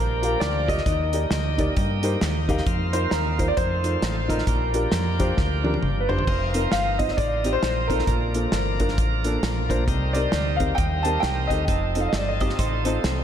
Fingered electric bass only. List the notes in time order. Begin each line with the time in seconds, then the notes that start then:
Already playing: A#1
0.41 D2
0.86 D#2
1.31 D2
1.77 G2
2.22 D#2
2.67 F2
3.12 D#2
3.58 F2
4.03 A1
4.47 A#1
4.92 F2
5.38 D2
5.83 G1
6.28 F1
6.73 G1
7.18 A1
7.63 A#1
8.08 A#1
8.53 G1
8.98 A1
9.43 A#1
9.88 C2
10.33 D2
10.78 D#2
11.23 C2
11.50 D2
11.68 F1
12.14 G1
12.59 A1
13.04 C2